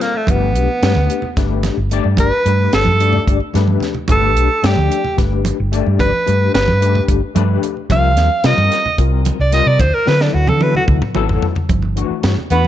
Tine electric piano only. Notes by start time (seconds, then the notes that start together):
Already playing: G3 C4 F4 A4
0.29 A3 D4 G4 B4
0.83 A3 D4 G4 B4
1.37 A3 D4 G4 B4
1.92 A3 D4 G4 D5
2.46 A3 D4 G4 B4
2.99 A3 D4 G4 D5
3.54 A3 D4 G4 B4
4.09 A3 D4 G4 B4
4.62 A3 D4 G4 D5
5.17 A3 D4 G4 B4
5.72 A3 D4 G4 D5
6.26 A3 D4 G4 B4
6.81 A3 D4 G4 B4
7.35 A3 D4 G4 B4
7.90 G3 C4 F4 A#4
8.44 G3 C4 F4 A#4
8.98 G3 C4 F4 A#4
9.51 G3 C4 F4 A#4
10.06 F#3 B3 E4 A4
10.61 F#3 B3 E4 A4
11.14 F#3 B3 E4 A4
11.96 E3 A3 D4 F#4
12.51 E3 A3 D4 F#4